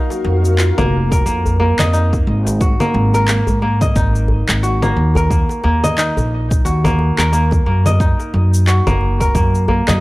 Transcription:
Already playing: kora A#3 D#4 G#4 A#4 D#5
0.10 djembe slap, cabasa
0.24 upright bass F2, djembe slap
0.45 cabasa
0.58 kora F4, clap, cabasa
0.78 upright bass F1, kora A#3, low conga, djembe bass, cabasa
1.11 kora A#4, kick, djembe tone, cabasa
1.26 upright bass F2, kora A#3, cabasa
1.46 djembe bass, cabasa
1.60 kora A#3, djembe tone
1.79 upright bass F2, kora D#5, clap, low conga, cabasa
1.93 kora D#4, cabasa
2.13 kick, djembe slap, djembe tone, cabasa
2.27 upright bass G#1
2.47 djembe slap, cabasa
2.61 kora F#4, kick, cabasa
2.80 kora A#3, djembe slap, low conga, cabasa
2.94 upright bass G#1, djembe slap
3.14 kora A#4, cabasa
3.28 kora A#3, clap, cabasa
3.47 upright bass G#2, djembe bass, cabasa
3.62 kora A#3, djembe slap
3.81 kora D#5, kick, djembe tone, low conga, cabasa
3.96 upright bass G#1, kora D#4, kick, cabasa
4.15 cabasa
4.28 djembe bass
4.48 upright bass G#1, clap, djembe tone, cabasa
4.63 kora F#4, cabasa
4.82 kora A#3, low conga, cabasa
4.96 upright bass D#2
5.15 kora A#4, djembe bass, cabasa
5.30 kora A#3, kick, cabasa
5.49 djembe slap, cabasa
5.64 upright bass D#2, kora A#3, djembe slap
5.84 kora D#5, low conga, cabasa
5.98 kora D#4, clap, cabasa
6.17 upright bass A#1, djembe bass, cabasa
6.50 kick, djembe tone, cabasa
6.65 upright bass D#2, kora F#4, cabasa
6.84 kora A#3, djembe bass, low conga, cabasa
6.99 djembe tone
7.18 upright bass D#2, kora A#4, clap, cabasa
7.33 kora A#3, cabasa
7.51 kick, djembe slap, djembe tone, cabasa
7.66 upright bass F#2, kora A#3
7.86 kora D#5, djembe slap, low conga, cabasa
8.00 kora D#4, kick, cabasa
8.20 djembe slap, cabasa
8.34 upright bass F#2, djembe slap
8.54 cabasa
8.67 kora F#4, clap, cabasa
8.87 upright bass F#1, kora A#3, djembe bass, low conga, cabasa
9.01 djembe slap
9.20 kora A#4, kick, djembe tone, cabasa
9.35 upright bass F#2, kora A#3, kick, cabasa
9.55 cabasa
9.68 kora A#3, djembe bass
9.88 upright bass F#2, kora D#5, clap, djembe tone, low conga, cabasa

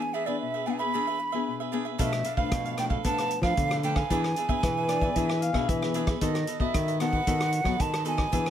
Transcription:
Already playing: nylon-string guitar E3 B3 D4 G#4, flute G#5
0.02 muted cavaquinho stroke
0.14 cavaquinho D4 G#4 B4 E5, flute E5
0.26 nylon-string guitar B3 D4 G#4, cavaquinho G#4 B4 E5, flute D5
0.41 nylon-string guitar B2, flute E5
0.54 cavaquinho G#4 B4 E5
0.66 nylon-string guitar B3 D4 G#4, cavaquinho D4 G#4 B4 E5, flute G#5
0.70 flute F5 G#5
0.79 cavaquinho G#4 B4 E5, flute B5
0.94 nylon-string guitar E3 B3 D4 G#4, cavaquinho D4 G#4 B4 E5
1.07 cavaquinho G#4 B4 E5
1.19 muted cavaquinho stroke
1.32 nylon-string guitar B3 D4 G#4, cavaquinho G#4 B4 E5
1.47 nylon-string guitar B2
1.60 cavaquinho G#4 B4 E5
1.72 nylon-string guitar B3 D4 G#4, cavaquinho D4 G#4 B4 E5
1.85 cavaquinho G#4 B4 E5
1.98 nylon-string guitar B2 F3 A3 D4, cavaquinho D4 A4 B4 F5, flute E5, kick, closed hi-hat
2.13 muted cavaquinho stroke, cross-stick, closed hi-hat
2.24 cavaquinho D4 A4 B4 F5, closed hi-hat
2.37 nylon-string guitar F3 A3 D4, cavaquinho A4 B4 F5, flute F5, kick
2.51 nylon-string guitar B2, kick, cross-stick, closed hi-hat
2.65 cavaquinho A4 B4 F5, closed hi-hat
2.77 nylon-string guitar F3 A3 D4, cavaquinho D4 A4 B4 F5, flute G5, cross-stick, closed hi-hat
2.90 cavaquinho A4 B4 F5, kick
3.04 nylon-string guitar B2 F3 A3 B3 D4, cavaquinho D4 A4 B4 F5, flute A5, kick, closed hi-hat
3.18 cavaquinho A4 B4 F5, cross-stick, closed hi-hat
3.31 muted cavaquinho stroke, closed hi-hat
3.43 nylon-string guitar F3 A3 D4, cavaquinho A4 B4 F5, flute F5, kick, cross-stick
3.57 nylon-string guitar B2 D3, kick, closed hi-hat
3.71 cavaquinho A4 B4 F5, cross-stick, closed hi-hat
3.83 nylon-string guitar F3 A3 D4, cavaquinho D4 A4 B4 F5, flute G5, closed hi-hat
3.96 cavaquinho A4 B4 F5, flute G#5, kick, cross-stick
4.10 nylon-string guitar E3 B3 D4 G#4, cavaquinho D4 G#4 B4 E5, kick, closed hi-hat
4.24 muted cavaquinho stroke, cross-stick
4.36 cavaquinho D4 G#4 B4 E5, closed hi-hat
4.49 nylon-string guitar B3 D4 G#4, cavaquinho G#4 B4 E5, kick
4.63 nylon-string guitar B2 E3, clarinet B4, kick, cross-stick, closed hi-hat
4.77 cavaquinho G#4 B4 E5
4.88 nylon-string guitar B3 D4 G#4, cavaquinho D4 G#4 B4 E5, clarinet D5, cross-stick, closed hi-hat
5.01 cavaquinho G#4 B4 E5, kick
5.15 nylon-string guitar E3 B3 D4 G#4, cavaquinho D4 G#4 B4 E5, clarinet E5, kick, closed hi-hat
5.29 cavaquinho G#4 B4 E5, cross-stick
5.42 clarinet F5, muted cavaquinho stroke, closed hi-hat
5.53 nylon-string guitar B2 B3 D4 G#4, cavaquinho G#4 B4 E5, kick, cross-stick
5.69 nylon-string guitar B2 E3, clarinet E5, kick, closed hi-hat
5.82 cavaquinho G#4 B4 E5, cross-stick
5.94 nylon-string guitar B3 D4 G#4, cavaquinho D4 G#4 B4 E5, closed hi-hat
6.07 cavaquinho G#4 B4 E5, kick, cross-stick, closed hi-hat
6.21 nylon-string guitar D#3 B3 F#4 A4, cavaquinho A4 B4 D#5, flute D#5, kick, closed hi-hat
6.35 muted cavaquinho stroke, cross-stick, closed hi-hat
6.47 cavaquinho A4 B4 D#5, closed hi-hat
6.60 nylon-string guitar B3 F#4 A4, cavaquinho B4 D#5, flute E5, kick
6.74 nylon-string guitar D#3, kick, cross-stick, closed hi-hat
6.88 cavaquinho B4 D#5, closed hi-hat
7.00 nylon-string guitar B3 F#4 A4, cavaquinho A4 B4 D#5, flute F#5, cross-stick, closed hi-hat
7.13 cavaquinho B4 D#5, kick
7.27 nylon-string guitar D#3 B3 F#4 A4, cavaquinho A4 B4 D#5, kick, closed hi-hat
7.40 cavaquinho B4 D#5, cross-stick, closed hi-hat
7.52 muted cavaquinho stroke, closed hi-hat
7.64 nylon-string guitar F#3 B3 F#4 A4, cavaquinho B4 D#5, kick, cross-stick
7.80 nylon-string guitar D#3, flute A5, kick, closed hi-hat
7.93 cavaquinho B4 D#5, cross-stick, closed hi-hat
8.05 nylon-string guitar B3 F#4 A4, cavaquinho A4 B4 D#5, flute G#5, closed hi-hat
8.17 cavaquinho B4 D#5, kick, cross-stick
8.32 nylon-string guitar E3 B3 D4 G#4, cavaquinho D4 G#4 B4 E5, kick, closed hi-hat
8.46 muted cavaquinho stroke, cross-stick

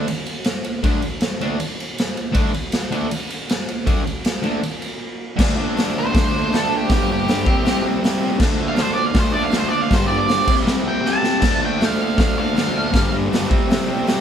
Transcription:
0.08 ride
0.26 ride
0.44 snare, ride
0.64 ride
0.83 distorted electric guitar D3 A3 D4, kick, ride
1.02 ride
1.21 snare, ride
1.41 distorted electric guitar D3 A3 D4, ride
1.60 ride
1.80 ride
1.98 snare, ride
2.17 ride
2.32 distorted electric guitar D3 A3 D4, kick, ride
2.54 ride
2.72 snare, ride
2.91 distorted electric guitar D3 A3 D4, ride
3.11 ride
3.30 ride
3.49 snare, ride
3.68 ride
3.86 distorted electric guitar D3 A3 D4, kick, ride
4.07 ride
4.25 snare, ride
4.42 distorted electric guitar D3 A3 D4, ride
4.63 ride
4.82 ride
5.37 distorted electric guitar D3 A3, kick, snare, crash
5.41 distorted electric guitar D4
5.56 distorted electric guitar D4
5.61 distorted electric guitar A3
5.74 distorted electric guitar D3 A3, open hi-hat
5.79 distorted electric guitar D4, snare
5.99 lead electric guitar C5
6.11 distorted electric guitar D3 A3, kick, open hi-hat
6.16 distorted electric guitar D4, snare
6.31 distorted electric guitar D4
6.36 distorted electric guitar A3
6.51 distorted electric guitar D3 A3, snare, open hi-hat
6.56 distorted electric guitar D4, lead electric guitar A4
6.69 distorted electric guitar D4
6.75 distorted electric guitar A3, lead electric guitar G4
6.89 distorted electric guitar G2 D3, lead electric guitar G4, kick, snare, open hi-hat
6.94 distorted electric guitar G3
7.08 distorted electric guitar G3
7.12 distorted electric guitar D3, lead electric guitar G4
7.28 distorted electric guitar G2 D3, snare, open hi-hat
7.33 distorted electric guitar G3
7.46 distorted electric guitar G3 C4, kick
7.51 distorted electric guitar C3
7.63 distorted electric guitar C3 G3, snare, open hi-hat
7.68 distorted electric guitar C4
7.82 distorted electric guitar C4
7.88 distorted electric guitar G3
8.00 distorted electric guitar C3 G3 C4, open hi-hat
8.05 snare
8.20 distorted electric guitar C4
8.24 distorted electric guitar G3
8.38 distorted electric guitar D3 A3, kick, snare, crash
8.42 distorted electric guitar D4
8.57 distorted electric guitar D4
8.62 distorted electric guitar A3
8.68 lead electric guitar F5
8.76 distorted electric guitar D3 A3, lead electric guitar C5, snare, open hi-hat
8.81 distorted electric guitar D4
8.93 lead electric guitar D5
9.06 lead electric guitar F5
9.12 distorted electric guitar D3 A3, kick, snare, open hi-hat
9.17 distorted electric guitar D4, lead electric guitar C5
9.32 distorted electric guitar D4, lead electric guitar D5
9.37 distorted electric guitar A3
9.43 lead electric guitar F5
9.50 distorted electric guitar D3 A3, snare, open hi-hat
9.55 distorted electric guitar D4, lead electric guitar C5
9.68 distorted electric guitar D4, lead electric guitar D5
9.75 distorted electric guitar A3
9.81 lead electric guitar F5
9.90 distorted electric guitar G2 D3, kick, snare, open hi-hat
9.94 distorted electric guitar G3, lead electric guitar C5
10.07 distorted electric guitar G3, lead electric guitar D5
10.12 distorted electric guitar D3
10.18 lead electric guitar D5
10.25 distorted electric guitar G2 D3, open hi-hat
10.29 distorted electric guitar G3, snare
10.45 distorted electric guitar G3 C4, kick, crash
10.49 distorted electric guitar C3
10.63 distorted electric guitar C3 G3
10.67 distorted electric guitar C4, snare
10.83 distorted electric guitar G3 C4
10.88 lead electric guitar G5
11.01 distorted electric guitar C3 G3
11.06 distorted electric guitar C4, lead electric guitar A5, snare
11.22 distorted electric guitar C4, snare
11.26 distorted electric guitar G3
11.41 distorted electric guitar D3 A3, kick, snare, crash, splash
11.47 distorted electric guitar D4
11.62 distorted electric guitar D4, lead electric guitar G5
11.66 distorted electric guitar A3
11.80 distorted electric guitar D3 A3, snare, open hi-hat
11.84 distorted electric guitar D4, lead electric guitar F5
12.02 lead electric guitar F5
12.17 distorted electric guitar D3 A3, lead electric guitar F5, kick, snare, open hi-hat
12.22 distorted electric guitar D4
12.35 distorted electric guitar D4, lead electric guitar F5
12.41 distorted electric guitar A3
12.54 distorted electric guitar D3 A3 D4, snare, open hi-hat
12.72 distorted electric guitar D4
12.77 distorted electric guitar A3
12.90 distorted electric guitar G2 D3, open hi-hat
12.94 distorted electric guitar G3, kick, snare
13.10 distorted electric guitar G3
13.15 distorted electric guitar D3
13.29 distorted electric guitar G2 D3, open hi-hat
13.34 distorted electric guitar G3, snare
13.47 distorted electric guitar G3 C4, kick
13.52 distorted electric guitar C3
13.67 distorted electric guitar C3 G3, open hi-hat
13.72 distorted electric guitar C4, snare
13.85 distorted electric guitar C4
13.90 distorted electric guitar G3
14.04 distorted electric guitar C3 G3, open hi-hat
14.09 distorted electric guitar C4, snare

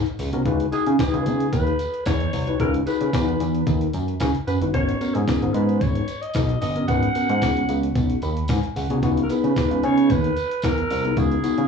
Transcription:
0.06 closed hi-hat
0.19 analog synth bass C#2, open hi-hat, tambourine
0.33 analog synth bass C2, tine electric piano B3 C#4 F#4 A#4, closed hi-hat
0.46 analog synth bass C#2, tine electric piano D#4 E4 F#4 B4, kick, closed hi-hat
0.60 closed hi-hat
0.72 tine electric piano D#4 E4 F#4 G#4, alto saxophone G#4, closed hi-hat, tambourine
0.86 analog synth bass C#3, closed hi-hat
0.99 tine electric piano D#4 E4 F#4 A#4, alto saxophone G#4, kick, snare, closed hi-hat, tambourine
1.06 tine electric piano B4
1.14 analog synth bass C#2, closed hi-hat
1.26 analog synth bass C#3, closed hi-hat, tambourine
1.40 closed hi-hat
1.52 analog synth bass D#2, alto saxophone B4, kick, closed hi-hat, tambourine
1.67 closed hi-hat
1.79 closed hi-hat, tambourine
1.94 closed hi-hat
2.06 analog synth bass E2, alto saxophone C#5, kick, snare, closed hi-hat, tambourine
2.20 closed hi-hat
2.33 analog synth bass C2, open hi-hat, tambourine
2.47 tine electric piano D#4 E4 F#4 B4, closed hi-hat
2.59 analog synth bass C#2, tine electric piano D#4 E4 F#4 B4, alto saxophone A#4, kick, closed hi-hat
2.74 closed hi-hat
2.86 tine electric piano D#4 E4 F#4 G#4, alto saxophone B4, closed hi-hat, tambourine
3.01 analog synth bass C#3, closed hi-hat
3.13 analog synth bass E2, tine electric piano D#4 E4 F#4 B4, kick, snare, closed hi-hat, tambourine
3.28 closed hi-hat
3.40 analog synth bass E2, closed hi-hat, tambourine
3.55 closed hi-hat
3.67 analog synth bass D#2, kick, closed hi-hat, tambourine
3.81 closed hi-hat
3.93 analog synth bass F#2, closed hi-hat, tambourine
4.08 closed hi-hat
4.20 analog synth bass C#3, kick, snare, closed hi-hat, tambourine
4.35 closed hi-hat
4.47 analog synth bass F#2, alto saxophone B4, closed hi-hat, tambourine
4.61 analog synth bass G1, tine electric piano D#4 E4 F#4 B4, closed hi-hat
4.74 analog synth bass G#1, tine electric piano B3 C#4 F#4 A#4, alto saxophone C#5, kick, closed hi-hat
4.89 closed hi-hat
5.01 tine electric piano B3 C#4 F#4 A#4, closed hi-hat, tambourine
5.14 analog synth bass G#2, alto saxophone G#4, closed hi-hat
5.27 tine electric piano B3 C#4 F#4 A#4, kick, snare, closed hi-hat, tambourine
5.42 analog synth bass G#1, closed hi-hat
5.54 analog synth bass G#2, alto saxophone B4, closed hi-hat
5.69 closed hi-hat
5.81 analog synth bass G#1, alto saxophone C#5, kick, closed hi-hat, tambourine
5.95 closed hi-hat
6.08 closed hi-hat, tambourine
6.22 alto saxophone D#5, closed hi-hat
6.34 analog synth bass B1, kick, snare, closed hi-hat, tambourine
6.49 closed hi-hat
6.61 analog synth bass G1, alto saxophone D#5, open hi-hat, tambourine
6.76 tine electric piano B3 C#4 F#4 A#4, closed hi-hat
6.88 analog synth bass G#1, tine electric piano B3 C#4 F#4 B4, alto saxophone F#5, kick, closed hi-hat, tambourine
7.03 closed hi-hat
7.15 tine electric piano B3 C#4 F#4 A#4, closed hi-hat, tambourine
7.29 analog synth bass G#2, closed hi-hat
7.42 analog synth bass C#2, tine electric piano B3 C#4 F#4 C#5, kick, snare, closed hi-hat, tambourine
7.57 closed hi-hat
7.69 analog synth bass C#2, closed hi-hat, tambourine
7.83 closed hi-hat
7.95 analog synth bass B1, kick, closed hi-hat, tambourine
8.10 closed hi-hat
8.22 analog synth bass D#2, tine electric piano B5, closed hi-hat, tambourine
8.37 closed hi-hat
8.48 analog synth bass G#2, tine electric piano G#5, kick, snare, closed hi-hat, tambourine
8.63 closed hi-hat
8.76 analog synth bass C#2, tine electric piano F#5, open hi-hat, tambourine
8.90 analog synth bass C2, tine electric piano B3 C#4 F#4 G#4, closed hi-hat
9.02 analog synth bass C#2, tine electric piano B3 D#4 E4 F#4, kick, closed hi-hat, tambourine
9.17 closed hi-hat
9.23 alto saxophone A#4
9.29 tine electric piano B3 D#4 E4 G#4, alto saxophone B4, closed hi-hat, tambourine
9.44 analog synth bass C#3, closed hi-hat
9.56 tine electric piano B3 D#4 E4 G#4, kick, snare, closed hi-hat, tambourine
9.71 analog synth bass C#2, closed hi-hat
9.83 analog synth bass C#3, alto saxophone C#5, closed hi-hat
9.98 closed hi-hat
10.10 analog synth bass D#2, alto saxophone B4, kick, closed hi-hat, tambourine
10.24 closed hi-hat
10.37 closed hi-hat, tambourine
10.51 closed hi-hat
10.62 analog synth bass E2, alto saxophone A#4, kick, snare, closed hi-hat, tambourine
10.78 closed hi-hat
10.90 analog synth bass C2, open hi-hat, tambourine
11.05 tine electric piano B3 D#4 E4 G#4, closed hi-hat
11.16 analog synth bass C#2, tine electric piano B3 D#4 E4 F#4, alto saxophone G#4, kick, closed hi-hat, tambourine
11.32 closed hi-hat
11.43 tine electric piano B3 D#4 E4 F#4, closed hi-hat, tambourine
11.58 analog synth bass C#3, closed hi-hat

